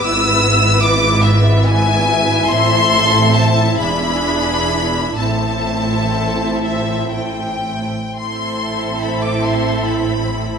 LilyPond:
<<
  \new Staff \with { instrumentName = "Violin section" } { \time 6/8 \key a \minor \tempo 4. = 46 e'''4 d'''8 e''8 gis''4 | c'''4 a''8 b''4. | a''4. e''8 g''4 | c'''4 b''16 d'''16 c'''8 b''4 | }
  \new Staff \with { instrumentName = "Violin section" } { \time 6/8 \key a \minor << { e''2.~ | e''2. | e''2~ e''8. r16 | e''2. | } \\ { b'2. | a'4. gis'4. | a'2~ a'8. r16 | a'2. | } >> }
  \new Staff \with { instrumentName = "Viola section" } { \time 6/8 \key a \minor << { e'2.~ | e'2. | e'2~ e'8. r16 | e'2. | } \\ { b2. | c'4. d'4. | c'2~ c'8. r16 | c'2. | } >> }
  \new Staff \with { instrumentName = "Cello section" } { \clef bass \time 6/8 \key a \minor gis,2. | a,4. e,4. | a,2~ a,8. r16 | a,2. | }
  \new Staff \with { instrumentName = "Double bass section" } { \clef bass \time 6/8 \key a \minor gis,,2. | a,,4. e,,4. | a,,2~ a,,8. r16 | a,,2. | }
>>